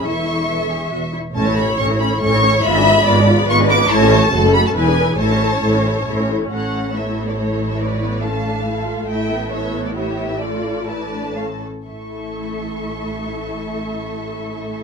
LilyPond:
<<
  \new Staff \with { instrumentName = "Violin section" } { \time 3/4 \key a \major \tempo 4 = 138 cis'''2~ cis'''8 r8 | a''8 b''8 cis'''8 b''8 cis'''4 | b''2 cis'''8 d'''8 | a''4. b''16 a''16 gis''4 |
a''2 r4 | fis''4 e''8. d''16 cis''8. e''16 | d''4 a''4. r8 | g''4 e''8. d''16 cis''8. e''16 |
d''4 a''4. r8 | cis'''2.~ | cis'''2. | }
  \new Staff \with { instrumentName = "Violin section" } { \time 3/4 \key a \major << { e''2~ e''8 r8 | cis''2 cis''4 | e''4 d''4 b'4 | cis''4 a'4 b'4 |
cis''2~ cis''8 r8 | cis''4 cis''2~ | cis''4 f''2 | e''4 cis''4 e''4 |
d''4 d''4 f''8 r8 | e''2.~ | e''2. | } \\ { r2. | r2. | r2. | r2. |
r2. | a'4 a'2 | b'4 a'4 a'4~ | a'2 g'4 |
a'4 b'4 a'8 r8 | a'2.~ | a'2. | } >> }
  \new Staff \with { instrumentName = "Viola section" } { \time 3/4 \key a \major << { a'4 a'8 gis'8 fis'8 e'8 | a'16 cis''16 a'16 cis''16 a'16 cis''16 a'16 cis''16 a'16 cis''16 a'16 cis''16 | eis'16 gis'16 eis'16 gis'16 eis'16 gis'16 eis'16 gis'16 eis'16 gis'16 eis'16 gis'16 | e'16 a'16 e'16 a'16 fis'16 a'16 fis'16 a'16 b'16 gis'16 b'16 gis'16 |
a'16 cis''16 a'16 cis''16 a'16 cis''16 a'16 cis''16 a'16 cis''16 a'16 cis''16 | cis'4 e'4 e'4~ | e'4 cis'8 d'8 e'8 f'8 | e'4 e'2 |
f'4 e'8 d'8 cis'8 r8 | e'2.~ | e'2. | } \\ { e'4 r2 | cis'16 e'16 cis'16 e'16 cis'16 e'16 cis'16 e'16 cis'16 e'16 cis'16 e'16 | b16 d'16 b16 d'16 b16 d'16 b16 d'16 b16 d'16 b16 d'16 | a16 cis'16 a16 cis'16 a16 cis'16 a16 cis'16 e'16 d'16 e'16 d'16 |
e'16 cis'16 e'16 cis'16 e'16 cis'16 e'16 cis'16 e'16 cis'16 e'16 cis'16 | a4 b4 a4 | a8 b8 a2 | a8 b2~ b8 |
a4 a4 a8 r8 | a2.~ | a2. | } >> }
  \new Staff \with { instrumentName = "Cello section" } { \clef bass \time 3/4 \key a \major e,2 e,8 r8 | a,4 a,4 a,4 | gis,4 gis,4 gis,4 | a,4 fis,4 e,4 |
a,4 a,4 a,4 | a,2.~ | a,2. | a,2.~ |
a,2~ a,8 r8 | a,2.~ | a,2. | }
  \new Staff \with { instrumentName = "Double bass section" } { \clef bass \time 3/4 \key a \major e,,2 e,,8 r8 | a,,4 a,,4 a,,4 | gis,,4 gis,,4 gis,,4 | a,,4 fis,,4 e,,4 |
a,,4 a,,4 a,,4 | a,,2.~ | a,,2. | a,,2.~ |
a,,2~ a,,8 r8 | a,,2.~ | a,,2. | }
>>